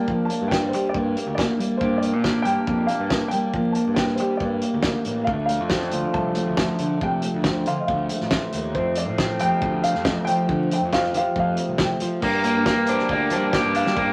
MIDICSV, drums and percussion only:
0, 0, Header, 1, 2, 480
1, 0, Start_track
1, 0, Key_signature, -2, "minor"
1, 0, Tempo, 434153
1, 93, Time_signature, 4, 2, 24, 8
1, 15621, End_track
2, 0, Start_track
2, 0, Title_t, "Drums"
2, 86, Note_on_c, 9, 36, 97
2, 197, Note_off_c, 9, 36, 0
2, 331, Note_on_c, 9, 42, 84
2, 441, Note_off_c, 9, 42, 0
2, 567, Note_on_c, 9, 36, 92
2, 577, Note_on_c, 9, 38, 97
2, 678, Note_off_c, 9, 36, 0
2, 687, Note_off_c, 9, 38, 0
2, 811, Note_on_c, 9, 42, 80
2, 922, Note_off_c, 9, 42, 0
2, 1044, Note_on_c, 9, 36, 99
2, 1155, Note_off_c, 9, 36, 0
2, 1293, Note_on_c, 9, 42, 86
2, 1403, Note_off_c, 9, 42, 0
2, 1526, Note_on_c, 9, 36, 106
2, 1538, Note_on_c, 9, 38, 104
2, 1636, Note_off_c, 9, 36, 0
2, 1648, Note_off_c, 9, 38, 0
2, 1774, Note_on_c, 9, 42, 88
2, 1885, Note_off_c, 9, 42, 0
2, 2000, Note_on_c, 9, 36, 103
2, 2111, Note_off_c, 9, 36, 0
2, 2241, Note_on_c, 9, 42, 86
2, 2351, Note_off_c, 9, 42, 0
2, 2478, Note_on_c, 9, 36, 95
2, 2481, Note_on_c, 9, 38, 91
2, 2588, Note_off_c, 9, 36, 0
2, 2591, Note_off_c, 9, 38, 0
2, 2713, Note_on_c, 9, 42, 81
2, 2824, Note_off_c, 9, 42, 0
2, 2956, Note_on_c, 9, 36, 101
2, 3066, Note_off_c, 9, 36, 0
2, 3190, Note_on_c, 9, 42, 83
2, 3301, Note_off_c, 9, 42, 0
2, 3432, Note_on_c, 9, 36, 112
2, 3434, Note_on_c, 9, 38, 105
2, 3542, Note_off_c, 9, 36, 0
2, 3545, Note_off_c, 9, 38, 0
2, 3663, Note_on_c, 9, 42, 80
2, 3774, Note_off_c, 9, 42, 0
2, 3909, Note_on_c, 9, 36, 96
2, 4020, Note_off_c, 9, 36, 0
2, 4146, Note_on_c, 9, 42, 82
2, 4256, Note_off_c, 9, 42, 0
2, 4383, Note_on_c, 9, 38, 102
2, 4387, Note_on_c, 9, 36, 105
2, 4493, Note_off_c, 9, 38, 0
2, 4498, Note_off_c, 9, 36, 0
2, 4501, Note_on_c, 9, 38, 29
2, 4611, Note_off_c, 9, 38, 0
2, 4617, Note_on_c, 9, 42, 84
2, 4728, Note_off_c, 9, 42, 0
2, 4869, Note_on_c, 9, 36, 98
2, 4980, Note_off_c, 9, 36, 0
2, 5106, Note_on_c, 9, 42, 85
2, 5217, Note_off_c, 9, 42, 0
2, 5335, Note_on_c, 9, 38, 107
2, 5347, Note_on_c, 9, 36, 102
2, 5446, Note_off_c, 9, 38, 0
2, 5457, Note_off_c, 9, 36, 0
2, 5581, Note_on_c, 9, 42, 90
2, 5692, Note_off_c, 9, 42, 0
2, 5828, Note_on_c, 9, 36, 106
2, 5939, Note_off_c, 9, 36, 0
2, 6069, Note_on_c, 9, 42, 88
2, 6179, Note_off_c, 9, 42, 0
2, 6298, Note_on_c, 9, 38, 103
2, 6309, Note_on_c, 9, 36, 101
2, 6408, Note_off_c, 9, 38, 0
2, 6420, Note_off_c, 9, 36, 0
2, 6426, Note_on_c, 9, 38, 31
2, 6537, Note_off_c, 9, 38, 0
2, 6540, Note_on_c, 9, 42, 82
2, 6650, Note_off_c, 9, 42, 0
2, 6790, Note_on_c, 9, 36, 96
2, 6900, Note_off_c, 9, 36, 0
2, 7021, Note_on_c, 9, 42, 86
2, 7132, Note_off_c, 9, 42, 0
2, 7267, Note_on_c, 9, 38, 112
2, 7271, Note_on_c, 9, 36, 102
2, 7377, Note_off_c, 9, 38, 0
2, 7382, Note_off_c, 9, 36, 0
2, 7504, Note_on_c, 9, 42, 86
2, 7615, Note_off_c, 9, 42, 0
2, 7753, Note_on_c, 9, 36, 102
2, 7864, Note_off_c, 9, 36, 0
2, 7983, Note_on_c, 9, 42, 81
2, 8093, Note_off_c, 9, 42, 0
2, 8225, Note_on_c, 9, 38, 102
2, 8231, Note_on_c, 9, 36, 98
2, 8335, Note_off_c, 9, 38, 0
2, 8341, Note_off_c, 9, 36, 0
2, 8468, Note_on_c, 9, 42, 78
2, 8579, Note_off_c, 9, 42, 0
2, 8715, Note_on_c, 9, 36, 96
2, 8826, Note_off_c, 9, 36, 0
2, 8949, Note_on_c, 9, 42, 86
2, 9059, Note_off_c, 9, 42, 0
2, 9075, Note_on_c, 9, 38, 32
2, 9185, Note_off_c, 9, 38, 0
2, 9185, Note_on_c, 9, 38, 111
2, 9192, Note_on_c, 9, 36, 108
2, 9296, Note_off_c, 9, 38, 0
2, 9302, Note_off_c, 9, 36, 0
2, 9427, Note_on_c, 9, 42, 87
2, 9538, Note_off_c, 9, 42, 0
2, 9672, Note_on_c, 9, 36, 100
2, 9783, Note_off_c, 9, 36, 0
2, 9900, Note_on_c, 9, 42, 94
2, 10011, Note_off_c, 9, 42, 0
2, 10153, Note_on_c, 9, 36, 100
2, 10155, Note_on_c, 9, 38, 100
2, 10263, Note_off_c, 9, 36, 0
2, 10266, Note_off_c, 9, 38, 0
2, 10386, Note_on_c, 9, 42, 90
2, 10497, Note_off_c, 9, 42, 0
2, 10633, Note_on_c, 9, 36, 103
2, 10744, Note_off_c, 9, 36, 0
2, 10876, Note_on_c, 9, 42, 95
2, 10987, Note_off_c, 9, 42, 0
2, 10997, Note_on_c, 9, 38, 31
2, 11107, Note_off_c, 9, 38, 0
2, 11111, Note_on_c, 9, 38, 110
2, 11112, Note_on_c, 9, 36, 114
2, 11222, Note_off_c, 9, 38, 0
2, 11223, Note_off_c, 9, 36, 0
2, 11356, Note_on_c, 9, 42, 87
2, 11467, Note_off_c, 9, 42, 0
2, 11597, Note_on_c, 9, 36, 109
2, 11707, Note_off_c, 9, 36, 0
2, 11846, Note_on_c, 9, 42, 83
2, 11956, Note_off_c, 9, 42, 0
2, 12079, Note_on_c, 9, 36, 100
2, 12084, Note_on_c, 9, 38, 96
2, 12190, Note_off_c, 9, 36, 0
2, 12194, Note_off_c, 9, 38, 0
2, 12210, Note_on_c, 9, 38, 31
2, 12320, Note_off_c, 9, 38, 0
2, 12320, Note_on_c, 9, 42, 81
2, 12430, Note_off_c, 9, 42, 0
2, 12558, Note_on_c, 9, 36, 102
2, 12668, Note_off_c, 9, 36, 0
2, 12791, Note_on_c, 9, 42, 80
2, 12902, Note_off_c, 9, 42, 0
2, 13028, Note_on_c, 9, 38, 108
2, 13033, Note_on_c, 9, 36, 111
2, 13139, Note_off_c, 9, 38, 0
2, 13144, Note_off_c, 9, 36, 0
2, 13271, Note_on_c, 9, 42, 85
2, 13381, Note_off_c, 9, 42, 0
2, 13511, Note_on_c, 9, 49, 101
2, 13515, Note_on_c, 9, 36, 106
2, 13621, Note_off_c, 9, 49, 0
2, 13625, Note_off_c, 9, 36, 0
2, 13753, Note_on_c, 9, 42, 94
2, 13864, Note_off_c, 9, 42, 0
2, 13996, Note_on_c, 9, 38, 105
2, 13997, Note_on_c, 9, 36, 99
2, 14106, Note_off_c, 9, 38, 0
2, 14107, Note_off_c, 9, 36, 0
2, 14226, Note_on_c, 9, 42, 91
2, 14336, Note_off_c, 9, 42, 0
2, 14360, Note_on_c, 9, 38, 31
2, 14471, Note_off_c, 9, 38, 0
2, 14474, Note_on_c, 9, 36, 97
2, 14585, Note_off_c, 9, 36, 0
2, 14707, Note_on_c, 9, 42, 93
2, 14817, Note_off_c, 9, 42, 0
2, 14959, Note_on_c, 9, 36, 106
2, 14960, Note_on_c, 9, 38, 100
2, 15070, Note_off_c, 9, 36, 0
2, 15071, Note_off_c, 9, 38, 0
2, 15199, Note_on_c, 9, 42, 86
2, 15310, Note_off_c, 9, 42, 0
2, 15329, Note_on_c, 9, 38, 71
2, 15439, Note_off_c, 9, 38, 0
2, 15441, Note_on_c, 9, 36, 96
2, 15551, Note_off_c, 9, 36, 0
2, 15621, End_track
0, 0, End_of_file